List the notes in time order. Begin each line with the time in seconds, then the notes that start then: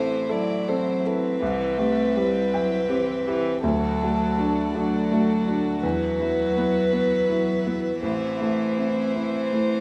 Already playing: A1 E3 C4 E4 A4 C5 E5
0.29 F#3 E4 A4 D5
0.68 C4 A4 C5
1.05 E4 A4 B4
1.42 C2 E3 E5 G5
1.78 A3 C4 G4
2.16 G3 E4 G4
2.53 F#3 E4 G5
2.89 E3 C4 G4
3.27 E3 E4 G4
3.62 D2 F#3 A3 F#4 A4 D5
4.03 A3 F#4
4.38 D4 F#4
4.74 F#3 D4 F#4 A4
5.12 A3 F#4
5.47 D4 F#4
5.82 E2 F#3 B3 B4 E5
6.20 F#3 E4
6.57 B3 E4
6.93 B3 E4
7.29 F#3 E4
7.66 B3 E4
8.02 A1 E3 C4 E4 C5
8.41 A3 E4
8.78 C4 E4
9.15 C4 E4
9.53 A3 E4